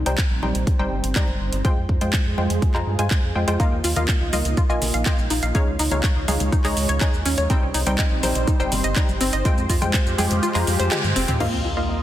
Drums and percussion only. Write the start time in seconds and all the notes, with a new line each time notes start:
0.06 closed hi-hat
0.18 kick, clap, closed hi-hat
0.43 high conga
0.55 closed hi-hat
0.67 kick, closed hi-hat
1.04 closed hi-hat
1.16 kick, clap, closed hi-hat
1.28 high conga
1.53 closed hi-hat
1.65 kick, closed hi-hat
1.89 kick
2.01 closed hi-hat
2.13 kick, clap, closed hi-hat
2.38 high conga
2.50 closed hi-hat
2.62 kick, closed hi-hat
2.74 clap
2.99 closed hi-hat
3.11 kick, clap, closed hi-hat
3.48 closed hi-hat
3.60 kick, closed hi-hat, shaker
3.84 open hi-hat, shaker
3.96 closed hi-hat, low conga, shaker
4.08 kick, clap, closed hi-hat, shaker
4.33 open hi-hat, high conga, shaker
4.45 closed hi-hat, low conga, shaker
4.57 kick, closed hi-hat, shaker
4.70 shaker
4.82 open hi-hat, low conga, shaker
4.94 closed hi-hat, shaker
5.06 kick, clap, closed hi-hat, shaker
5.18 high conga, shaker
5.30 open hi-hat, shaker
5.43 closed hi-hat, shaker
5.55 kick, closed hi-hat, shaker
5.79 open hi-hat, shaker
5.91 closed hi-hat, low conga, shaker
6.03 kick, clap, closed hi-hat, shaker
6.28 open hi-hat, high conga, shaker
6.40 closed hi-hat, low conga, shaker
6.52 kick, closed hi-hat, shaker
6.64 clap, open hi-hat, shaker
6.77 open hi-hat, shaker
6.89 closed hi-hat, shaker
7.01 kick, clap, closed hi-hat, shaker
7.14 shaker
7.26 open hi-hat, shaker
7.38 closed hi-hat, shaker
7.50 kick, closed hi-hat, shaker
7.74 open hi-hat, shaker
7.87 closed hi-hat, low conga, shaker
7.98 kick, clap, closed hi-hat, shaker
8.23 open hi-hat, high conga, shaker
8.35 closed hi-hat, low conga, shaker
8.48 kick, closed hi-hat, shaker
8.60 shaker
8.72 open hi-hat, low conga, shaker
8.84 closed hi-hat, shaker
8.96 kick, clap, closed hi-hat, shaker
9.09 high conga, shaker
9.21 open hi-hat, shaker
9.33 closed hi-hat, shaker
9.45 kick, closed hi-hat, shaker
9.58 shaker
9.70 kick, open hi-hat, shaker
9.82 closed hi-hat, high conga, low conga, shaker
9.94 kick, clap, closed hi-hat, shaker
10.07 shaker
10.18 open hi-hat, high conga, shaker
10.31 closed hi-hat, low conga, shaker
10.43 closed hi-hat, shaker
10.55 clap, open hi-hat, shaker
10.67 open hi-hat, high tom, shaker
10.80 closed hi-hat, high tom, shaker
10.91 clap, closed hi-hat, mid tom, shaker
11.04 mid tom, shaker
11.16 open hi-hat, shaker
11.28 closed hi-hat, mid tom, shaker
11.40 crash